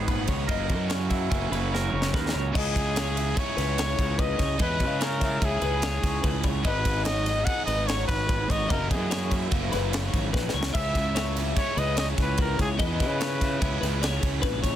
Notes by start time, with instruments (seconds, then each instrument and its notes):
Already playing: fingered electric bass G#1, overdriven electric guitar G#2 D#3 G#3 B3 D#4, clean electric guitar D#3 G#3 B3 F#4 G#4
0.07 clean electric guitar A#2 B4, kick, ride
0.26 fingered electric bass C#2, clean electric guitar G#2 C#5, kick, ride
0.47 fingered electric bass F#1, clean electric guitar F#2 A#4 D#5, overdriven electric guitar F#2 C#3 E3 A#3, kick, ride
0.52 overdriven electric guitar C#4
0.69 fingered electric bass F#2, kick, ride
0.90 clean electric guitar C#4 C#5, snare, ride
1.09 clean electric guitar F#3 E4 E5, kick, ride
1.29 fingered electric bass F#1, overdriven electric guitar F#2 C#3 E3 A#3 C#4, clean electric guitar C#4, kick, ride
1.51 fingered electric bass F#1, clean electric guitar C#3 E4 B4, ride
1.72 clean electric guitar A#4 C#5, snare
1.93 fingered electric bass F#1, clean electric guitar C#4
2.02 snare
2.13 fingered electric bass D#2, clean electric guitar F#2 A#4 B4, kick, snare
2.29 snare
2.34 fingered electric bass C#2, clean electric guitar C#5
2.53 fingered electric bass C#2, overdriven electric guitar C#3 G#3 C#4 E4 G#4, clean electric guitar D#5, kick, crash
2.58 trumpet G#4
2.76 kick, ride
2.96 clean electric guitar C#5, snare, ride
3.16 clean electric guitar E5, ride
3.34 overdriven electric guitar C#3 G#3 C#4 E4 G#4, kick, ride
3.38 trumpet C#5
3.57 fingered electric bass C#2, clean electric guitar B4, snare, ride
3.78 clean electric guitar C#5, snare, ride
3.99 fingered electric bass C#2, kick, ride
4.18 clean electric guitar B4, trumpet D#5, kick, ride
4.38 fingered electric bass C#2, clean electric guitar C#5, kick, snare, ride
4.59 fingered electric bass E2, overdriven electric guitar C#3 G#3 C#4 E4 G#4, trumpet B4, clean electric guitar D#5, kick, ride
4.80 fingered electric bass C#3, kick, ride
5.00 trumpet A#4, clean electric guitar C#5, snare, ride
5.21 clean electric guitar E5, kick, snare, ride
5.40 fingered electric bass C#2, overdriven electric guitar C#3 G#3 C#4 E4 G#4, kick, ride
5.45 trumpet G#4
5.61 fingered electric bass C#2, clean electric guitar B4, ride
5.82 clean electric guitar C#5, snare, ride
6.03 fingered electric bass C#2, kick, snare, ride
6.23 fingered electric bass C#2, clean electric guitar B4, kick, ride
6.43 clean electric guitar C#5, kick, ride
6.63 fingered electric bass G#1, overdriven electric guitar G#2 D#3 G#3 B3 D#4 G#4, trumpet B4, clean electric guitar D#5, kick, ride
6.85 kick, ride
7.05 clean electric guitar C#5, trumpet D#5, snare, ride
7.26 clean electric guitar D#5, snare, ride
7.45 overdriven electric guitar G#2 D#3 G#3 B3 D#4, trumpet F#5, kick, ride
7.49 overdriven electric guitar G#4
7.66 fingered electric bass G#1, clean electric guitar B4, trumpet D#5, ride
7.87 trumpet C#5, clean electric guitar C#5, snare, ride
8.08 fingered electric bass G#1, trumpet B4, kick, ride
8.27 clean electric guitar B4, kick, ride
8.48 fingered electric bass G#1, clean electric guitar C#5, trumpet D#5, kick, ride
8.68 fingered electric bass F#1, overdriven electric guitar F#2 C#3 E3 A#3 E4, trumpet A#4, clean electric guitar D#5, kick, ride
8.91 fingered electric bass F#2, trumpet G#4, kick, ride
9.11 clean electric guitar C#5, snare, ride
9.31 clean electric guitar E5, kick, ride
9.50 fingered electric bass F#1, overdriven electric guitar F#2 C#3 E3 A#3 E4, kick, ride
9.72 fingered electric bass F#1, clean electric guitar B4, snare, ride
9.92 clean electric guitar C#5, snare, ride
10.14 fingered electric bass G#1, kick, ride
10.33 fingered electric bass A#1, clean electric guitar B4, kick, snare
10.49 snare
10.54 fingered electric bass C#2, clean electric guitar C#5
10.63 snare
10.73 fingered electric bass C#2, overdriven electric guitar C#3 G#3 C#4 E4, clean electric guitar E5, trumpet E5, kick, splash, crash
10.95 kick, snare, ride
11.15 clean electric guitar C#5, snare, ride
11.35 clean electric guitar E5, snare, ride
11.54 overdriven electric guitar C#3 G#3 C#4 E4, trumpet C#5, kick, snare, ride
11.77 fingered electric bass C#2, clean electric guitar B4, trumpet D#5, ride
11.97 clean electric guitar C#5, trumpet D#5, snare, ride
12.18 fingered electric bass C#2, trumpet B4, kick, snare, ride
12.38 trumpet A#4, clean electric guitar B4, kick, ride
12.59 fingered electric bass C#2, trumpet G#4, clean electric guitar C#5, kick, ride
12.77 fingered electric bass E2, overdriven electric guitar C#3 G#3 C#4 E4, clean electric guitar D#5, kick, ride
12.82 trumpet B4
13.00 fingered electric bass C#3, kick, snare, ride
13.20 clean electric guitar C#5, snare, ride
13.41 clean electric guitar E5, kick, snare, ride
13.59 fingered electric bass C#2, overdriven electric guitar C#3 G#3 C#4 E4, kick, ride
13.81 fingered electric bass C#2, clean electric guitar B4, snare, ride
14.02 clean electric guitar C#5, snare, ride
14.23 fingered electric bass C#2, kick, ride
14.42 fingered electric bass A#1, clean electric guitar B4, kick, snare, ride
14.63 clean electric guitar C#5, kick, ride